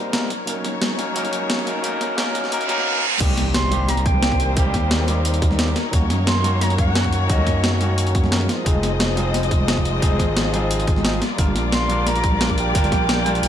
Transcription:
Already playing: tine electric piano G3 A#3 C4 D#4 A#4, string section G3 D#4 A#4 C5, riser
0.12 tine electric piano G3 A#3 C4 D#4 A#4, snare, closed hi-hat
0.30 string section F#3 D#4 C#5, closed hi-hat
0.46 tine electric piano F#3 A#3 C#4 D#4 A#4, closed hi-hat
0.65 snare, closed hi-hat
0.82 snare, closed hi-hat, high conga
0.97 tine electric piano F#3 A#3 C#4 D#4 A#4, closed hi-hat, high bongo
1.14 tine electric piano F#3 A#3 C#4 D#4 A#4, closed hi-hat
1.25 closed hi-hat, high bongo
1.33 closed hi-hat
1.50 snare, closed hi-hat
1.59 snare
1.65 tine electric piano F#3 A#3 C#4 D#4 A#4, closed hi-hat, high bongo
1.82 tine electric piano F#3 A#3 C#4 D#4 A#4, closed hi-hat
2.01 snare, closed hi-hat
2.16 tine electric piano F#3 A#3 C#4 D#4 A#4, snare, closed hi-hat, high conga
2.35 closed hi-hat, high bongo
2.44 snare
2.50 tine electric piano F#3 A#3 C#4 D#4 A#4, closed hi-hat, reverse cymbal
2.61 closed hi-hat
2.67 tine electric piano F#3 A#3 C#4 D#4 A#4, closed hi-hat, high bongo
2.78 snare
3.19 analog synth bass C2, tine electric piano D#3 G3 A#3 C4 G4, string section G3 D#4 A#4 C5, kick, closed hi-hat, crash, impact
3.30 high conga
3.37 snare, closed hi-hat
3.54 flute C6, snare, closed hi-hat
3.70 tine electric piano D#3 G3 A#3 C4 G4, closed hi-hat, high bongo, high conga
3.88 flute A#5, snare, closed hi-hat
3.97 closed hi-hat, high bongo
4.05 flute G5, kick, closed hi-hat
4.14 high conga
4.22 tine electric piano D#3 G3 A#3 C4 G4, snare, closed hi-hat
4.32 kick, snare
4.40 closed hi-hat, high bongo
4.55 analog synth bass C2, tine electric piano D#3 G3 A#3 C4 G4, flute G5, kick, closed hi-hat
4.66 high conga
4.74 analog synth bass D#2, kick, snare, closed hi-hat
4.91 snare, closed hi-hat
5.06 tine electric piano D#3 G3 A#3 C4 G4, closed hi-hat, high bongo, high conga
5.25 closed hi-hat
5.34 closed hi-hat
5.42 kick, closed hi-hat, high bongo
5.51 snare, high conga
5.58 tine electric piano D#3 G3 A#3 C4 G4, snare, closed hi-hat
5.68 snare
5.76 string section F#3 C#5, snare, closed hi-hat
5.91 analog synth bass D#2, tine electric piano D#3 F#3 A#3 C#4 F#4, kick, closed hi-hat
6.02 high conga
6.10 analog synth bass F#2, snare, closed hi-hat
6.27 flute C6, snare, closed hi-hat
6.42 tine electric piano D#3 F#3 A#3 C#4 F#4, closed hi-hat, high bongo, high conga
6.61 flute A#5, snare, closed hi-hat
6.70 closed hi-hat, high bongo
6.78 flute F#5, kick, closed hi-hat
6.87 high conga
6.94 tine electric piano D#3 F#3 A#3 C#4 F#4, snare, closed hi-hat
7.04 kick, snare
7.13 closed hi-hat, high bongo
7.27 analog synth bass D#2, tine electric piano D#3 F#3 A#3 C#4 F#4, flute D#5, kick, closed hi-hat
7.38 high conga
7.47 analog synth bass F#2, kick, snare, closed hi-hat
7.64 snare, closed hi-hat
7.79 tine electric piano D#3 F#3 A#3 C#4 F#4, closed hi-hat, high bongo, high conga
7.98 closed hi-hat
8.07 closed hi-hat
8.15 kick, closed hi-hat, high bongo
8.24 snare, high conga
8.31 tine electric piano F3 G#3 C4 D#4 A#4, snare, closed hi-hat
8.41 snare
8.49 string section G#3 F4 C5 D#5, snare, closed hi-hat
8.64 analog synth bass F1, tine electric piano F3 G#3 C4 D#4 G#4, kick, closed hi-hat
8.75 high conga
8.83 snare, closed hi-hat
9.00 snare, closed hi-hat
9.15 tine electric piano F3 G#3 C4 D#4 G#4, closed hi-hat, high bongo, high conga
9.34 snare, closed hi-hat
9.43 closed hi-hat, high bongo
9.51 kick, closed hi-hat
9.60 high conga
9.67 tine electric piano F3 G#3 C4 D#4 G#4, snare, closed hi-hat
9.77 kick, snare
9.85 closed hi-hat, high bongo
10.00 analog synth bass F1, tine electric piano F3 G#3 C4 D#4 G#4, kick, closed hi-hat
10.12 high conga
10.19 analog synth bass G#1, kick, snare, closed hi-hat
10.37 snare, closed hi-hat
10.51 tine electric piano F3 G#3 C4 D#4 G#4, closed hi-hat, high bongo, high conga
10.71 closed hi-hat
10.80 closed hi-hat
10.87 kick, closed hi-hat, high bongo
10.96 snare, high conga
11.04 tine electric piano F3 G#3 C4 D#4 G#4, snare, closed hi-hat
11.13 snare
11.22 string section G3 A#4 D5, snare, closed hi-hat
11.36 analog synth bass G1, tine electric piano G3 A#3 D4 F4 A#4, kick, closed hi-hat
11.48 high conga
11.56 analog synth bass A#1, snare, closed hi-hat
11.72 flute C6, snare, closed hi-hat
11.88 tine electric piano G3 A#3 D4 F4 A#4, closed hi-hat, high bongo, high conga
12.07 flute A#5, snare, closed hi-hat
12.16 closed hi-hat, high bongo
12.24 kick, closed hi-hat
12.32 high conga
12.40 tine electric piano G3 A#3 D4 F4 A#4, snare, closed hi-hat
12.50 kick, snare
12.58 flute G5, closed hi-hat, high bongo
12.73 analog synth bass G1, tine electric piano G3 A#3 D4 F4 A#4, kick, closed hi-hat
12.84 closed hi-hat, high conga
12.92 analog synth bass A#1, kick, snare, closed hi-hat
13.09 snare, closed hi-hat
13.24 tine electric piano G3 A#3 D4 F4 A#4, closed hi-hat, high bongo, high conga
13.35 closed hi-hat
13.43 analog synth bass A#1, closed hi-hat

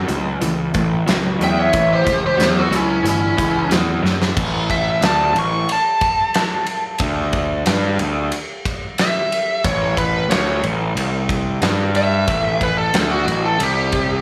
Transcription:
0.08 picked electric bass C#2, overdriven electric guitar A2 F#3, closed hi-hat
0.41 picked electric bass C#2, overdriven electric guitar A2 E3, closed hi-hat
0.74 picked electric bass A1, overdriven electric guitar A2 E3, kick, closed hi-hat
1.06 picked electric bass C#2, overdriven electric guitar A2 F#3, snare, closed hi-hat
1.39 picked electric bass E2, overdriven electric guitar A2 F#3, closed hi-hat
1.44 lead electric guitar E5 G5
1.59 lead electric guitar C#5 E5
1.73 picked electric bass A1, overdriven electric guitar A2 E3, kick, closed hi-hat
1.93 lead electric guitar G4 C5
2.05 picked electric bass C#2, overdriven electric guitar A2 E3, kick, closed hi-hat
2.26 lead electric guitar G4 C5
2.37 picked electric bass E2, overdriven electric guitar A2 F#3, snare, closed hi-hat
2.59 lead electric guitar F#4 A4
2.70 picked electric bass C#2, overdriven electric guitar A2 F#3, closed hi-hat
2.76 lead electric guitar C#4 E4
3.03 picked electric bass G1, overdriven electric guitar A2 E3, closed hi-hat
3.09 lead electric guitar C#4 E4
3.37 picked electric bass C#2, overdriven electric guitar A2 E3, kick, closed hi-hat
3.70 picked electric bass E2, overdriven electric guitar A2 F#3, snare, closed hi-hat
4.03 picked electric bass F#2, overdriven electric guitar A2 F#3, snare
4.22 snare
4.37 picked electric bass A1, kick, crash
4.70 lead electric guitar E5, kick, ride
5.01 picked electric bass D2, snare, ride
5.05 lead electric guitar A5
5.34 picked electric bass A1, ride
5.39 lead electric guitar C#6
5.69 lead electric guitar A5, ride
6.01 kick, ride
6.34 snare, ride
6.67 ride
6.99 picked electric bass D2, kick, ride
7.33 kick, ride
7.66 picked electric bass G2, snare, ride
7.99 picked electric bass D2, ride
8.32 ride
8.65 kick, ride
8.98 lead electric guitar E5, snare, ride
9.32 ride
9.64 picked electric bass A1, lead electric guitar C#5, kick, ride
9.97 lead electric guitar B4, kick, ride
10.29 picked electric bass D2, lead electric guitar C#5, snare, ride
10.63 picked electric bass A1, ride
10.95 picked electric bass C2, ride
11.29 kick, ride
11.62 picked electric bass G2, snare, ride
11.95 lead electric guitar E5, ride
12.28 picked electric bass A1, kick, ride
12.61 lead electric guitar B4, kick, ride
12.78 lead electric guitar A4
12.94 picked electric bass D2, snare, ride
13.11 lead electric guitar F#4
13.27 picked electric bass A1, ride
13.45 lead electric guitar A4
13.60 picked electric bass C2, lead electric guitar G4, ride
13.92 kick, ride

